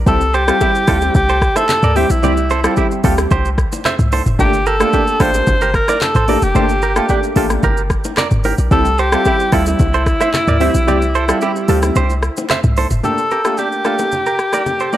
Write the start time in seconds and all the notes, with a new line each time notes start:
0.06 C2 G3 C4 E4 G4 A4, kick, low conga, shaker
0.21 shaker
0.34 G4 A4 C5, shaker
0.47 G3 C4 E4 F4 G4 A4, cross-stick, shaker
0.61 E4 G4, kick, high bongo, shaker
0.75 shaker
0.87 D2 G3 C4 E4 F4 G4 A4, kick, cross-stick, open hi-hat, shaker
1.01 high bongo, shaker
1.15 C2 G4, kick, low bongo, low conga, shaker
1.29 A4 C5, shaker
1.42 kick, cross-stick, shaker
1.56 A4 C5 E5, cross-stick, low bongo, shaker
1.69 clap, high bongo, low conga, shaker
1.83 D2 A#4 D5, mid tom, shaker
1.96 G3 C4 E4 G4 C5 E5, open hi-hat, low bongo, shaker
2.10 A#1 E4, shaker
2.23 C2 G3 C4 E4 G4 D5, low conga, shaker
2.37 shaker
2.50 A4 C5, high bongo, shaker
2.64 G3 C4 E4 F4 G4 A4, cross-stick, shaker
2.77 E4 G4, kick, high bongo, shaker
2.91 shaker
3.03 D2 G3 C4 E4 F4 G4 A4, kick, open hi-hat, shaker
3.18 cross-stick, high bongo, shaker
3.31 C2 G4 C5, kick, low bongo, low conga, shaker
3.45 shaker
3.58 kick, cross-stick, shaker
3.72 low bongo, shaker
3.85 C5 E5, cross-stick, clap, high bongo, low conga, shaker
3.99 C2, mid tom, shaker
4.12 A4 C5, open hi-hat, low bongo, shaker
4.26 F1, mid tom, shaker
4.39 G1 A3 A#3 D4 G4, kick, low conga, shaker
4.53 shaker
4.66 G4 A4 A#4, shaker
4.80 A3 A#3 D4 F4 G4 A4, cross-stick, shaker
4.93 D4 G4, kick, high bongo, shaker
5.07 shaker
5.20 A1 A3 A#3 D4 F4 G4 A4 C5, kick, cross-stick, open hi-hat, shaker
5.34 high bongo, shaker
5.47 G1, kick, low bongo, low conga, shaker
5.61 G4 A#4, shaker
5.74 A#4, kick, cross-stick, shaker
5.88 A#4 D5, cross-stick, low bongo, shaker
6.01 A4, clap, high bongo, low conga, shaker
6.15 A1 A4 C5, mid tom, shaker
6.28 A3 A#3 D4 G4 A#4 D5, open hi-hat, low bongo, shaker
6.42 F1 G4, shaker
6.55 G1 A3 A#3 D4 G4 A4 C5, low conga, shaker
6.69 shaker
6.82 G4 A#4, shaker
6.96 A3 A#3 D4 F4 G4 A4, cross-stick, shaker
7.09 D4 G4, kick, high bongo, shaker
7.23 shaker
7.35 A1 A3 A#3 D4 F4 G4 A4, kick, open hi-hat, shaker
7.50 cross-stick, high bongo, shaker
7.63 G1 G4 A#4, kick, low bongo, low conga, shaker
7.77 shaker
7.90 kick, cross-stick, shaker
8.04 low bongo, shaker
8.17 A#4 D5, cross-stick, clap, high bongo, low conga, shaker
8.31 G1, mid tom, shaker
8.44 G4 A#4, open hi-hat, low bongo, shaker
8.58 A#1, shaker
8.71 C2 G3 C4 E4 G4 A4, kick, low conga, shaker
8.85 shaker
8.98 G4 A4 C5, shaker
9.12 G3 C4 E4 F4 G4 A4, cross-stick, shaker
9.25 E4 G4, kick, high bongo, shaker
9.40 shaker
9.52 D2 G3 C4 E4 F4 G4 A4, kick, cross-stick, open hi-hat, shaker
9.66 E4, high bongo, shaker
9.79 C2, kick, low bongo, low conga, shaker
9.94 A4 C5, shaker
10.06 kick, cross-stick, shaker
10.21 C5 E5, cross-stick, low bongo, shaker
10.34 clap, high bongo, low conga, shaker
10.48 D2 A#4 D5, mid tom, shaker
10.60 G3 C4 E4 G4 C5 E5, open hi-hat, low bongo, shaker
10.74 A#1, shaker
10.87 C2 G3 C4 E4 G4 D5, low conga, shaker
11.02 shaker
11.15 A4 C5, shaker
11.28 G3 C4 E4 F4 G4 A4, cross-stick, shaker
11.41 E4 G4, high bongo, shaker
11.56 shaker
11.68 D2 G3 C4 E4 F4 G4 A4, open hi-hat, shaker
11.82 cross-stick, high bongo, low bongo, shaker
11.95 C2 G4 C5, low bongo, low conga, shaker
12.10 shaker
12.23 cross-stick, shaker
12.37 low bongo, shaker
12.50 C5 E5, cross-stick, clap, high bongo, low conga, shaker
12.63 C2, mid tom, shaker
12.77 A4 C5, open hi-hat, low bongo, shaker
12.91 F1, mid tom, shaker
13.03 A3 A#3 D4 G4 A4, low conga, shaker
13.18 shaker
13.31 G4 A#4, high bongo, shaker
13.44 A3 A#3 D4 F4 G4 A4, cross-stick, shaker
13.57 D4 G4, high bongo, shaker
13.72 shaker
13.85 A3 A#3 D4 F4 G4 A4, cross-stick, shaker
13.99 high bongo, low bongo, shaker
14.12 low conga, shaker
14.26 G4 A#4, shaker
14.39 cross-stick, shaker
14.53 A#4 D5, cross-stick, low bongo, shaker
14.66 high bongo, low conga, shaker
14.80 A4 C5, shaker
14.92 A3 A#3 D4 G4 D5, low bongo, shaker